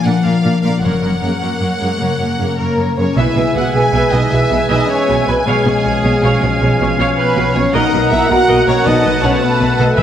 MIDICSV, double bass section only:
0, 0, Header, 1, 2, 480
1, 0, Start_track
1, 0, Tempo, 390371
1, 1021, Time_signature, 12, 3, 24, 8
1, 4385, Tempo, 377358
1, 12606, End_track
2, 0, Start_track
2, 0, Title_t, "Double bass section"
2, 0, Program_c, 0, 48
2, 1010, Note_on_c, 0, 30, 41
2, 1240, Note_off_c, 0, 30, 0
2, 3887, Note_on_c, 0, 35, 53
2, 3985, Note_off_c, 0, 35, 0
2, 4123, Note_on_c, 0, 35, 40
2, 4221, Note_off_c, 0, 35, 0
2, 4362, Note_on_c, 0, 35, 42
2, 4463, Note_off_c, 0, 35, 0
2, 4604, Note_on_c, 0, 35, 43
2, 4705, Note_off_c, 0, 35, 0
2, 4849, Note_on_c, 0, 35, 56
2, 4948, Note_off_c, 0, 35, 0
2, 5094, Note_on_c, 0, 35, 48
2, 5192, Note_off_c, 0, 35, 0
2, 5337, Note_on_c, 0, 35, 41
2, 5435, Note_off_c, 0, 35, 0
2, 5574, Note_on_c, 0, 35, 45
2, 5674, Note_off_c, 0, 35, 0
2, 5825, Note_on_c, 0, 35, 64
2, 5923, Note_off_c, 0, 35, 0
2, 6325, Note_on_c, 0, 35, 44
2, 6420, Note_off_c, 0, 35, 0
2, 6571, Note_on_c, 0, 35, 47
2, 6664, Note_off_c, 0, 35, 0
2, 6809, Note_on_c, 0, 35, 57
2, 6903, Note_off_c, 0, 35, 0
2, 7051, Note_on_c, 0, 35, 42
2, 7145, Note_off_c, 0, 35, 0
2, 7291, Note_on_c, 0, 35, 48
2, 7386, Note_off_c, 0, 35, 0
2, 7536, Note_on_c, 0, 35, 45
2, 7630, Note_off_c, 0, 35, 0
2, 7768, Note_on_c, 0, 35, 65
2, 7864, Note_off_c, 0, 35, 0
2, 8016, Note_on_c, 0, 35, 51
2, 8111, Note_off_c, 0, 35, 0
2, 8255, Note_on_c, 0, 35, 43
2, 8350, Note_off_c, 0, 35, 0
2, 8502, Note_on_c, 0, 35, 55
2, 8597, Note_off_c, 0, 35, 0
2, 8743, Note_on_c, 0, 35, 67
2, 8838, Note_off_c, 0, 35, 0
2, 9235, Note_on_c, 0, 35, 51
2, 9327, Note_off_c, 0, 35, 0
2, 9460, Note_on_c, 0, 35, 52
2, 9554, Note_off_c, 0, 35, 0
2, 9708, Note_on_c, 0, 35, 64
2, 9800, Note_off_c, 0, 35, 0
2, 9945, Note_on_c, 0, 35, 50
2, 10038, Note_off_c, 0, 35, 0
2, 10183, Note_on_c, 0, 35, 56
2, 10276, Note_off_c, 0, 35, 0
2, 10405, Note_on_c, 0, 35, 50
2, 10501, Note_off_c, 0, 35, 0
2, 10649, Note_on_c, 0, 35, 70
2, 10743, Note_off_c, 0, 35, 0
2, 10884, Note_on_c, 0, 35, 57
2, 10979, Note_off_c, 0, 35, 0
2, 11120, Note_on_c, 0, 35, 49
2, 11215, Note_off_c, 0, 35, 0
2, 11360, Note_on_c, 0, 35, 58
2, 11454, Note_off_c, 0, 35, 0
2, 11589, Note_on_c, 0, 35, 80
2, 11685, Note_off_c, 0, 35, 0
2, 12066, Note_on_c, 0, 35, 54
2, 12161, Note_off_c, 0, 35, 0
2, 12296, Note_on_c, 0, 35, 62
2, 12393, Note_off_c, 0, 35, 0
2, 12528, Note_on_c, 0, 35, 73
2, 12606, Note_off_c, 0, 35, 0
2, 12606, End_track
0, 0, End_of_file